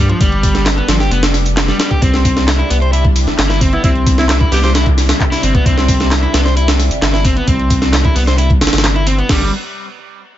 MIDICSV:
0, 0, Header, 1, 6, 480
1, 0, Start_track
1, 0, Tempo, 454545
1, 213, Time_signature, 4, 2, 24, 8
1, 10960, End_track
2, 0, Start_track
2, 0, Title_t, "Alto saxophone"
2, 0, Program_c, 0, 65
2, 3938, Note_on_c, 0, 64, 92
2, 4012, Note_off_c, 0, 64, 0
2, 4055, Note_on_c, 0, 64, 77
2, 4132, Note_off_c, 0, 64, 0
2, 4419, Note_on_c, 0, 64, 94
2, 4493, Note_off_c, 0, 64, 0
2, 4548, Note_on_c, 0, 64, 80
2, 4619, Note_off_c, 0, 64, 0
2, 4778, Note_on_c, 0, 67, 89
2, 4854, Note_off_c, 0, 67, 0
2, 4901, Note_on_c, 0, 67, 82
2, 4974, Note_off_c, 0, 67, 0
2, 10960, End_track
3, 0, Start_track
3, 0, Title_t, "Analog synth pad"
3, 0, Program_c, 1, 89
3, 0, Note_on_c, 1, 55, 86
3, 0, Note_on_c, 1, 59, 78
3, 0, Note_on_c, 1, 62, 97
3, 2091, Note_off_c, 1, 59, 0
3, 2092, Note_off_c, 1, 62, 0
3, 2128, Note_on_c, 1, 62, 81
3, 2129, Note_on_c, 1, 48, 87
3, 2132, Note_on_c, 1, 64, 99
3, 9769, Note_off_c, 1, 48, 0
3, 9769, Note_off_c, 1, 62, 0
3, 9770, Note_off_c, 1, 64, 0
3, 9773, Note_off_c, 1, 55, 0
3, 10960, End_track
4, 0, Start_track
4, 0, Title_t, "Overdriven electric guitar"
4, 0, Program_c, 2, 29
4, 96, Note_on_c, 2, 53, 78
4, 198, Note_off_c, 2, 53, 0
4, 218, Note_on_c, 2, 55, 86
4, 684, Note_off_c, 2, 55, 0
4, 817, Note_on_c, 2, 59, 78
4, 923, Note_off_c, 2, 59, 0
4, 937, Note_on_c, 2, 53, 101
4, 999, Note_off_c, 2, 53, 0
4, 1056, Note_on_c, 2, 67, 77
4, 1162, Note_off_c, 2, 67, 0
4, 1175, Note_on_c, 2, 59, 84
4, 1289, Note_off_c, 2, 59, 0
4, 1774, Note_on_c, 2, 55, 104
4, 1881, Note_off_c, 2, 55, 0
4, 1894, Note_on_c, 2, 55, 76
4, 1999, Note_off_c, 2, 55, 0
4, 2014, Note_on_c, 2, 67, 107
4, 2121, Note_off_c, 2, 67, 0
4, 2130, Note_on_c, 2, 60, 84
4, 2600, Note_off_c, 2, 60, 0
4, 2730, Note_on_c, 2, 64, 78
4, 2839, Note_off_c, 2, 64, 0
4, 2852, Note_on_c, 2, 59, 98
4, 2916, Note_off_c, 2, 59, 0
4, 2974, Note_on_c, 2, 72, 76
4, 3081, Note_off_c, 2, 72, 0
4, 3090, Note_on_c, 2, 64, 86
4, 3207, Note_off_c, 2, 64, 0
4, 3691, Note_on_c, 2, 64, 76
4, 3800, Note_off_c, 2, 64, 0
4, 3812, Note_on_c, 2, 60, 80
4, 3928, Note_off_c, 2, 60, 0
4, 3937, Note_on_c, 2, 59, 81
4, 4039, Note_off_c, 2, 59, 0
4, 4054, Note_on_c, 2, 60, 87
4, 4522, Note_off_c, 2, 60, 0
4, 4651, Note_on_c, 2, 64, 76
4, 4760, Note_off_c, 2, 64, 0
4, 4770, Note_on_c, 2, 59, 103
4, 4835, Note_off_c, 2, 59, 0
4, 4895, Note_on_c, 2, 72, 75
4, 5001, Note_off_c, 2, 72, 0
4, 5012, Note_on_c, 2, 64, 81
4, 5128, Note_off_c, 2, 64, 0
4, 5613, Note_on_c, 2, 64, 81
4, 5720, Note_off_c, 2, 64, 0
4, 5731, Note_on_c, 2, 60, 79
4, 5848, Note_off_c, 2, 60, 0
4, 5852, Note_on_c, 2, 59, 78
4, 5956, Note_off_c, 2, 59, 0
4, 5973, Note_on_c, 2, 60, 87
4, 6441, Note_off_c, 2, 60, 0
4, 6575, Note_on_c, 2, 64, 77
4, 6682, Note_off_c, 2, 64, 0
4, 6689, Note_on_c, 2, 59, 100
4, 6755, Note_off_c, 2, 59, 0
4, 6813, Note_on_c, 2, 72, 80
4, 6920, Note_off_c, 2, 72, 0
4, 6936, Note_on_c, 2, 64, 85
4, 7050, Note_off_c, 2, 64, 0
4, 7536, Note_on_c, 2, 64, 78
4, 7642, Note_off_c, 2, 64, 0
4, 7654, Note_on_c, 2, 60, 77
4, 7769, Note_off_c, 2, 60, 0
4, 7778, Note_on_c, 2, 59, 84
4, 7879, Note_off_c, 2, 59, 0
4, 7893, Note_on_c, 2, 60, 83
4, 8361, Note_off_c, 2, 60, 0
4, 8500, Note_on_c, 2, 64, 76
4, 8604, Note_off_c, 2, 64, 0
4, 8613, Note_on_c, 2, 59, 103
4, 8677, Note_off_c, 2, 59, 0
4, 8737, Note_on_c, 2, 72, 78
4, 8843, Note_off_c, 2, 72, 0
4, 8853, Note_on_c, 2, 64, 85
4, 8969, Note_off_c, 2, 64, 0
4, 9458, Note_on_c, 2, 64, 79
4, 9563, Note_off_c, 2, 64, 0
4, 9578, Note_on_c, 2, 60, 76
4, 9691, Note_off_c, 2, 60, 0
4, 9697, Note_on_c, 2, 59, 80
4, 9799, Note_off_c, 2, 59, 0
4, 9813, Note_on_c, 2, 55, 95
4, 10037, Note_off_c, 2, 55, 0
4, 10960, End_track
5, 0, Start_track
5, 0, Title_t, "Sub bass"
5, 0, Program_c, 3, 38
5, 0, Note_on_c, 3, 43, 103
5, 138, Note_off_c, 3, 43, 0
5, 217, Note_on_c, 3, 31, 96
5, 860, Note_off_c, 3, 31, 0
5, 930, Note_on_c, 3, 31, 99
5, 1164, Note_off_c, 3, 31, 0
5, 1170, Note_on_c, 3, 29, 105
5, 1817, Note_off_c, 3, 29, 0
5, 2134, Note_on_c, 3, 36, 102
5, 2779, Note_off_c, 3, 36, 0
5, 2856, Note_on_c, 3, 36, 102
5, 3450, Note_off_c, 3, 36, 0
5, 3456, Note_on_c, 3, 31, 44
5, 3550, Note_off_c, 3, 31, 0
5, 3573, Note_on_c, 3, 31, 100
5, 3978, Note_off_c, 3, 31, 0
5, 4055, Note_on_c, 3, 36, 100
5, 4699, Note_off_c, 3, 36, 0
5, 4773, Note_on_c, 3, 36, 101
5, 5418, Note_off_c, 3, 36, 0
5, 5734, Note_on_c, 3, 31, 102
5, 5880, Note_off_c, 3, 31, 0
5, 5975, Note_on_c, 3, 36, 99
5, 6619, Note_off_c, 3, 36, 0
5, 6694, Note_on_c, 3, 36, 101
5, 7288, Note_off_c, 3, 36, 0
5, 7295, Note_on_c, 3, 31, 45
5, 7390, Note_off_c, 3, 31, 0
5, 7409, Note_on_c, 3, 31, 104
5, 7816, Note_off_c, 3, 31, 0
5, 7894, Note_on_c, 3, 36, 101
5, 8538, Note_off_c, 3, 36, 0
5, 8615, Note_on_c, 3, 36, 105
5, 9090, Note_off_c, 3, 36, 0
5, 9097, Note_on_c, 3, 31, 105
5, 9169, Note_off_c, 3, 31, 0
5, 9220, Note_on_c, 3, 31, 87
5, 9741, Note_off_c, 3, 31, 0
5, 9814, Note_on_c, 3, 31, 96
5, 10037, Note_off_c, 3, 31, 0
5, 10960, End_track
6, 0, Start_track
6, 0, Title_t, "Drums"
6, 100, Note_on_c, 9, 42, 32
6, 205, Note_off_c, 9, 42, 0
6, 217, Note_on_c, 9, 36, 119
6, 218, Note_on_c, 9, 42, 42
6, 219, Note_off_c, 9, 42, 0
6, 219, Note_on_c, 9, 42, 93
6, 323, Note_off_c, 9, 36, 0
6, 324, Note_off_c, 9, 42, 0
6, 340, Note_on_c, 9, 42, 21
6, 446, Note_off_c, 9, 42, 0
6, 457, Note_on_c, 9, 36, 85
6, 458, Note_on_c, 9, 42, 64
6, 459, Note_on_c, 9, 46, 80
6, 563, Note_off_c, 9, 36, 0
6, 563, Note_off_c, 9, 42, 0
6, 564, Note_off_c, 9, 46, 0
6, 578, Note_on_c, 9, 38, 51
6, 579, Note_on_c, 9, 42, 33
6, 684, Note_off_c, 9, 38, 0
6, 685, Note_off_c, 9, 42, 0
6, 695, Note_on_c, 9, 38, 111
6, 695, Note_on_c, 9, 42, 82
6, 696, Note_off_c, 9, 42, 0
6, 696, Note_on_c, 9, 39, 112
6, 696, Note_on_c, 9, 42, 44
6, 801, Note_off_c, 9, 38, 0
6, 802, Note_off_c, 9, 39, 0
6, 802, Note_off_c, 9, 42, 0
6, 821, Note_on_c, 9, 42, 22
6, 926, Note_off_c, 9, 42, 0
6, 935, Note_on_c, 9, 38, 106
6, 935, Note_on_c, 9, 42, 82
6, 938, Note_on_c, 9, 46, 83
6, 1040, Note_off_c, 9, 38, 0
6, 1040, Note_off_c, 9, 42, 0
6, 1043, Note_off_c, 9, 46, 0
6, 1058, Note_on_c, 9, 42, 32
6, 1059, Note_on_c, 9, 38, 49
6, 1163, Note_off_c, 9, 42, 0
6, 1165, Note_off_c, 9, 38, 0
6, 1177, Note_on_c, 9, 42, 42
6, 1178, Note_off_c, 9, 42, 0
6, 1178, Note_on_c, 9, 42, 61
6, 1283, Note_off_c, 9, 42, 0
6, 1298, Note_on_c, 9, 38, 107
6, 1298, Note_on_c, 9, 42, 78
6, 1403, Note_off_c, 9, 38, 0
6, 1403, Note_off_c, 9, 42, 0
6, 1417, Note_on_c, 9, 38, 48
6, 1417, Note_on_c, 9, 46, 83
6, 1522, Note_off_c, 9, 38, 0
6, 1522, Note_off_c, 9, 46, 0
6, 1537, Note_on_c, 9, 42, 32
6, 1542, Note_off_c, 9, 42, 0
6, 1542, Note_on_c, 9, 42, 61
6, 1648, Note_off_c, 9, 42, 0
6, 1657, Note_on_c, 9, 39, 112
6, 1657, Note_on_c, 9, 42, 45
6, 1658, Note_off_c, 9, 42, 0
6, 1658, Note_on_c, 9, 38, 118
6, 1658, Note_on_c, 9, 42, 90
6, 1762, Note_off_c, 9, 39, 0
6, 1763, Note_off_c, 9, 38, 0
6, 1763, Note_off_c, 9, 42, 0
6, 1776, Note_on_c, 9, 42, 22
6, 1779, Note_on_c, 9, 38, 52
6, 1882, Note_off_c, 9, 42, 0
6, 1885, Note_off_c, 9, 38, 0
6, 1894, Note_on_c, 9, 46, 86
6, 1897, Note_on_c, 9, 38, 105
6, 1897, Note_on_c, 9, 42, 80
6, 2000, Note_off_c, 9, 46, 0
6, 2003, Note_off_c, 9, 38, 0
6, 2003, Note_off_c, 9, 42, 0
6, 2015, Note_on_c, 9, 42, 31
6, 2017, Note_on_c, 9, 36, 86
6, 2120, Note_off_c, 9, 42, 0
6, 2123, Note_off_c, 9, 36, 0
6, 2133, Note_on_c, 9, 42, 42
6, 2135, Note_on_c, 9, 36, 114
6, 2136, Note_off_c, 9, 42, 0
6, 2136, Note_on_c, 9, 42, 96
6, 2241, Note_off_c, 9, 36, 0
6, 2242, Note_off_c, 9, 42, 0
6, 2255, Note_on_c, 9, 42, 21
6, 2259, Note_on_c, 9, 38, 56
6, 2361, Note_off_c, 9, 42, 0
6, 2364, Note_off_c, 9, 38, 0
6, 2376, Note_on_c, 9, 36, 94
6, 2376, Note_on_c, 9, 46, 82
6, 2379, Note_on_c, 9, 42, 69
6, 2481, Note_off_c, 9, 36, 0
6, 2482, Note_off_c, 9, 46, 0
6, 2484, Note_off_c, 9, 42, 0
6, 2498, Note_on_c, 9, 42, 32
6, 2500, Note_on_c, 9, 38, 58
6, 2604, Note_off_c, 9, 42, 0
6, 2606, Note_off_c, 9, 38, 0
6, 2616, Note_on_c, 9, 39, 110
6, 2616, Note_on_c, 9, 42, 43
6, 2617, Note_off_c, 9, 42, 0
6, 2617, Note_on_c, 9, 38, 122
6, 2617, Note_on_c, 9, 42, 94
6, 2721, Note_off_c, 9, 39, 0
6, 2723, Note_off_c, 9, 38, 0
6, 2723, Note_off_c, 9, 42, 0
6, 2740, Note_on_c, 9, 42, 21
6, 2846, Note_off_c, 9, 42, 0
6, 2855, Note_on_c, 9, 46, 83
6, 2859, Note_on_c, 9, 42, 70
6, 2961, Note_off_c, 9, 46, 0
6, 2964, Note_off_c, 9, 42, 0
6, 2979, Note_on_c, 9, 42, 31
6, 3084, Note_off_c, 9, 42, 0
6, 3096, Note_on_c, 9, 42, 42
6, 3099, Note_off_c, 9, 42, 0
6, 3099, Note_on_c, 9, 42, 88
6, 3205, Note_off_c, 9, 42, 0
6, 3217, Note_on_c, 9, 36, 101
6, 3217, Note_on_c, 9, 42, 22
6, 3323, Note_off_c, 9, 36, 0
6, 3323, Note_off_c, 9, 42, 0
6, 3334, Note_on_c, 9, 46, 83
6, 3337, Note_on_c, 9, 42, 67
6, 3440, Note_off_c, 9, 46, 0
6, 3443, Note_off_c, 9, 42, 0
6, 3453, Note_on_c, 9, 42, 30
6, 3460, Note_on_c, 9, 38, 46
6, 3559, Note_off_c, 9, 42, 0
6, 3566, Note_off_c, 9, 38, 0
6, 3575, Note_on_c, 9, 39, 113
6, 3575, Note_on_c, 9, 42, 43
6, 3577, Note_off_c, 9, 42, 0
6, 3577, Note_on_c, 9, 38, 122
6, 3577, Note_on_c, 9, 42, 90
6, 3680, Note_off_c, 9, 39, 0
6, 3682, Note_off_c, 9, 38, 0
6, 3682, Note_off_c, 9, 42, 0
6, 3694, Note_on_c, 9, 42, 20
6, 3697, Note_on_c, 9, 38, 54
6, 3800, Note_off_c, 9, 42, 0
6, 3803, Note_off_c, 9, 38, 0
6, 3814, Note_on_c, 9, 36, 99
6, 3815, Note_on_c, 9, 42, 71
6, 3815, Note_on_c, 9, 46, 85
6, 3920, Note_off_c, 9, 36, 0
6, 3920, Note_off_c, 9, 42, 0
6, 3921, Note_off_c, 9, 46, 0
6, 3936, Note_on_c, 9, 42, 30
6, 4042, Note_off_c, 9, 42, 0
6, 4054, Note_on_c, 9, 36, 118
6, 4054, Note_on_c, 9, 42, 92
6, 4055, Note_off_c, 9, 42, 0
6, 4055, Note_on_c, 9, 42, 43
6, 4159, Note_off_c, 9, 36, 0
6, 4160, Note_off_c, 9, 42, 0
6, 4176, Note_on_c, 9, 42, 21
6, 4282, Note_off_c, 9, 42, 0
6, 4293, Note_on_c, 9, 36, 100
6, 4293, Note_on_c, 9, 42, 69
6, 4294, Note_on_c, 9, 46, 87
6, 4398, Note_off_c, 9, 42, 0
6, 4399, Note_off_c, 9, 36, 0
6, 4400, Note_off_c, 9, 46, 0
6, 4414, Note_on_c, 9, 42, 32
6, 4416, Note_on_c, 9, 38, 58
6, 4519, Note_off_c, 9, 42, 0
6, 4521, Note_off_c, 9, 38, 0
6, 4530, Note_on_c, 9, 39, 105
6, 4530, Note_on_c, 9, 42, 43
6, 4532, Note_off_c, 9, 42, 0
6, 4532, Note_on_c, 9, 38, 119
6, 4532, Note_on_c, 9, 42, 95
6, 4635, Note_off_c, 9, 39, 0
6, 4638, Note_off_c, 9, 38, 0
6, 4638, Note_off_c, 9, 42, 0
6, 4652, Note_on_c, 9, 42, 21
6, 4655, Note_on_c, 9, 36, 96
6, 4757, Note_off_c, 9, 42, 0
6, 4760, Note_off_c, 9, 36, 0
6, 4772, Note_on_c, 9, 46, 86
6, 4774, Note_off_c, 9, 46, 0
6, 4774, Note_on_c, 9, 38, 41
6, 4774, Note_on_c, 9, 46, 82
6, 4879, Note_off_c, 9, 38, 0
6, 4879, Note_off_c, 9, 46, 0
6, 4896, Note_on_c, 9, 42, 31
6, 4897, Note_on_c, 9, 38, 57
6, 5001, Note_off_c, 9, 42, 0
6, 5002, Note_off_c, 9, 38, 0
6, 5014, Note_on_c, 9, 42, 42
6, 5016, Note_off_c, 9, 42, 0
6, 5016, Note_on_c, 9, 38, 108
6, 5016, Note_on_c, 9, 42, 82
6, 5122, Note_off_c, 9, 38, 0
6, 5122, Note_off_c, 9, 42, 0
6, 5135, Note_on_c, 9, 36, 87
6, 5139, Note_on_c, 9, 42, 21
6, 5241, Note_off_c, 9, 36, 0
6, 5244, Note_off_c, 9, 42, 0
6, 5256, Note_on_c, 9, 38, 36
6, 5256, Note_on_c, 9, 46, 72
6, 5258, Note_off_c, 9, 46, 0
6, 5258, Note_on_c, 9, 46, 85
6, 5361, Note_off_c, 9, 38, 0
6, 5363, Note_off_c, 9, 46, 0
6, 5376, Note_on_c, 9, 38, 108
6, 5376, Note_on_c, 9, 42, 82
6, 5379, Note_off_c, 9, 42, 0
6, 5379, Note_on_c, 9, 42, 30
6, 5481, Note_off_c, 9, 38, 0
6, 5485, Note_off_c, 9, 42, 0
6, 5495, Note_on_c, 9, 36, 87
6, 5497, Note_on_c, 9, 39, 106
6, 5497, Note_on_c, 9, 42, 43
6, 5600, Note_off_c, 9, 36, 0
6, 5602, Note_off_c, 9, 39, 0
6, 5602, Note_off_c, 9, 42, 0
6, 5620, Note_on_c, 9, 38, 37
6, 5620, Note_on_c, 9, 46, 74
6, 5622, Note_on_c, 9, 42, 20
6, 5725, Note_off_c, 9, 38, 0
6, 5725, Note_off_c, 9, 46, 0
6, 5727, Note_off_c, 9, 42, 0
6, 5736, Note_on_c, 9, 46, 86
6, 5739, Note_on_c, 9, 42, 69
6, 5841, Note_off_c, 9, 46, 0
6, 5844, Note_off_c, 9, 42, 0
6, 5858, Note_on_c, 9, 36, 100
6, 5858, Note_on_c, 9, 42, 31
6, 5963, Note_off_c, 9, 36, 0
6, 5964, Note_off_c, 9, 42, 0
6, 5975, Note_on_c, 9, 36, 116
6, 5977, Note_on_c, 9, 42, 43
6, 5978, Note_off_c, 9, 42, 0
6, 5978, Note_on_c, 9, 42, 95
6, 6081, Note_off_c, 9, 36, 0
6, 6083, Note_off_c, 9, 42, 0
6, 6099, Note_on_c, 9, 38, 56
6, 6099, Note_on_c, 9, 42, 21
6, 6205, Note_off_c, 9, 38, 0
6, 6205, Note_off_c, 9, 42, 0
6, 6214, Note_on_c, 9, 46, 87
6, 6216, Note_on_c, 9, 36, 97
6, 6219, Note_on_c, 9, 42, 67
6, 6320, Note_off_c, 9, 46, 0
6, 6321, Note_off_c, 9, 36, 0
6, 6325, Note_off_c, 9, 42, 0
6, 6336, Note_on_c, 9, 42, 33
6, 6342, Note_on_c, 9, 38, 58
6, 6442, Note_off_c, 9, 42, 0
6, 6448, Note_off_c, 9, 38, 0
6, 6454, Note_on_c, 9, 39, 107
6, 6454, Note_on_c, 9, 42, 44
6, 6460, Note_off_c, 9, 42, 0
6, 6460, Note_on_c, 9, 38, 124
6, 6460, Note_on_c, 9, 42, 90
6, 6560, Note_off_c, 9, 39, 0
6, 6566, Note_off_c, 9, 38, 0
6, 6566, Note_off_c, 9, 42, 0
6, 6577, Note_on_c, 9, 42, 21
6, 6683, Note_off_c, 9, 42, 0
6, 6694, Note_on_c, 9, 46, 90
6, 6697, Note_on_c, 9, 38, 108
6, 6697, Note_on_c, 9, 42, 82
6, 6799, Note_off_c, 9, 46, 0
6, 6802, Note_off_c, 9, 38, 0
6, 6802, Note_off_c, 9, 42, 0
6, 6818, Note_on_c, 9, 42, 32
6, 6819, Note_on_c, 9, 38, 49
6, 6924, Note_off_c, 9, 42, 0
6, 6925, Note_off_c, 9, 38, 0
6, 6935, Note_on_c, 9, 42, 63
6, 6938, Note_off_c, 9, 42, 0
6, 6938, Note_on_c, 9, 42, 42
6, 7043, Note_off_c, 9, 42, 0
6, 7056, Note_on_c, 9, 38, 109
6, 7056, Note_on_c, 9, 42, 22
6, 7162, Note_off_c, 9, 38, 0
6, 7162, Note_off_c, 9, 42, 0
6, 7175, Note_on_c, 9, 38, 46
6, 7176, Note_on_c, 9, 46, 90
6, 7281, Note_off_c, 9, 38, 0
6, 7282, Note_off_c, 9, 46, 0
6, 7297, Note_on_c, 9, 42, 64
6, 7301, Note_off_c, 9, 42, 0
6, 7301, Note_on_c, 9, 42, 31
6, 7406, Note_off_c, 9, 42, 0
6, 7415, Note_on_c, 9, 38, 123
6, 7415, Note_on_c, 9, 42, 91
6, 7417, Note_off_c, 9, 42, 0
6, 7417, Note_on_c, 9, 39, 105
6, 7417, Note_on_c, 9, 42, 45
6, 7521, Note_off_c, 9, 38, 0
6, 7522, Note_off_c, 9, 39, 0
6, 7522, Note_off_c, 9, 42, 0
6, 7537, Note_on_c, 9, 38, 55
6, 7541, Note_on_c, 9, 42, 21
6, 7643, Note_off_c, 9, 38, 0
6, 7646, Note_off_c, 9, 42, 0
6, 7652, Note_on_c, 9, 42, 70
6, 7655, Note_on_c, 9, 36, 96
6, 7658, Note_on_c, 9, 46, 90
6, 7758, Note_off_c, 9, 42, 0
6, 7760, Note_off_c, 9, 36, 0
6, 7764, Note_off_c, 9, 46, 0
6, 7780, Note_on_c, 9, 42, 32
6, 7886, Note_off_c, 9, 42, 0
6, 7894, Note_on_c, 9, 42, 93
6, 7895, Note_on_c, 9, 36, 116
6, 7897, Note_off_c, 9, 42, 0
6, 7897, Note_on_c, 9, 42, 44
6, 8001, Note_off_c, 9, 36, 0
6, 8003, Note_off_c, 9, 42, 0
6, 8021, Note_on_c, 9, 42, 22
6, 8126, Note_off_c, 9, 42, 0
6, 8135, Note_on_c, 9, 42, 70
6, 8136, Note_on_c, 9, 36, 96
6, 8138, Note_on_c, 9, 46, 88
6, 8241, Note_off_c, 9, 36, 0
6, 8241, Note_off_c, 9, 42, 0
6, 8244, Note_off_c, 9, 46, 0
6, 8256, Note_on_c, 9, 38, 62
6, 8258, Note_on_c, 9, 42, 34
6, 8362, Note_off_c, 9, 38, 0
6, 8363, Note_off_c, 9, 42, 0
6, 8375, Note_on_c, 9, 38, 123
6, 8375, Note_on_c, 9, 42, 89
6, 8379, Note_off_c, 9, 42, 0
6, 8379, Note_on_c, 9, 39, 105
6, 8379, Note_on_c, 9, 42, 44
6, 8481, Note_off_c, 9, 38, 0
6, 8485, Note_off_c, 9, 39, 0
6, 8485, Note_off_c, 9, 42, 0
6, 8497, Note_on_c, 9, 36, 97
6, 8498, Note_on_c, 9, 42, 23
6, 8603, Note_off_c, 9, 36, 0
6, 8603, Note_off_c, 9, 42, 0
6, 8614, Note_on_c, 9, 46, 93
6, 8616, Note_off_c, 9, 46, 0
6, 8616, Note_on_c, 9, 46, 81
6, 8721, Note_off_c, 9, 46, 0
6, 8737, Note_on_c, 9, 38, 60
6, 8738, Note_on_c, 9, 42, 34
6, 8843, Note_off_c, 9, 38, 0
6, 8844, Note_off_c, 9, 42, 0
6, 8853, Note_on_c, 9, 42, 92
6, 8858, Note_off_c, 9, 42, 0
6, 8858, Note_on_c, 9, 42, 44
6, 8963, Note_off_c, 9, 42, 0
6, 8977, Note_on_c, 9, 36, 99
6, 8982, Note_on_c, 9, 42, 22
6, 9082, Note_off_c, 9, 36, 0
6, 9088, Note_off_c, 9, 42, 0
6, 9096, Note_on_c, 9, 38, 92
6, 9096, Note_on_c, 9, 42, 70
6, 9099, Note_on_c, 9, 46, 91
6, 9157, Note_off_c, 9, 38, 0
6, 9157, Note_off_c, 9, 42, 0
6, 9157, Note_on_c, 9, 38, 93
6, 9157, Note_on_c, 9, 42, 66
6, 9205, Note_off_c, 9, 46, 0
6, 9218, Note_off_c, 9, 38, 0
6, 9218, Note_off_c, 9, 42, 0
6, 9218, Note_on_c, 9, 38, 90
6, 9218, Note_on_c, 9, 42, 70
6, 9220, Note_off_c, 9, 42, 0
6, 9220, Note_on_c, 9, 42, 32
6, 9275, Note_off_c, 9, 38, 0
6, 9275, Note_off_c, 9, 42, 0
6, 9275, Note_on_c, 9, 38, 94
6, 9275, Note_on_c, 9, 42, 70
6, 9335, Note_off_c, 9, 38, 0
6, 9335, Note_off_c, 9, 42, 0
6, 9335, Note_on_c, 9, 38, 105
6, 9335, Note_on_c, 9, 42, 83
6, 9339, Note_off_c, 9, 42, 0
6, 9339, Note_on_c, 9, 39, 107
6, 9339, Note_on_c, 9, 42, 45
6, 9441, Note_off_c, 9, 38, 0
6, 9445, Note_off_c, 9, 39, 0
6, 9445, Note_off_c, 9, 42, 0
6, 9460, Note_on_c, 9, 42, 21
6, 9566, Note_off_c, 9, 42, 0
6, 9574, Note_on_c, 9, 42, 64
6, 9576, Note_on_c, 9, 46, 92
6, 9680, Note_off_c, 9, 42, 0
6, 9681, Note_off_c, 9, 46, 0
6, 9700, Note_on_c, 9, 42, 32
6, 9806, Note_off_c, 9, 42, 0
6, 9814, Note_on_c, 9, 38, 115
6, 9814, Note_on_c, 9, 49, 91
6, 9815, Note_on_c, 9, 36, 114
6, 9919, Note_off_c, 9, 38, 0
6, 9919, Note_off_c, 9, 49, 0
6, 9921, Note_off_c, 9, 36, 0
6, 10960, End_track
0, 0, End_of_file